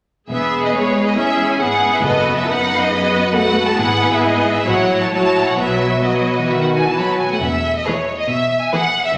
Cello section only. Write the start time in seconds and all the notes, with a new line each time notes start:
0.30 E2
1.61 G#2
2.04 F#2
3.78 G#2
4.67 A2
5.58 B2
7.42 E2
8.30 B2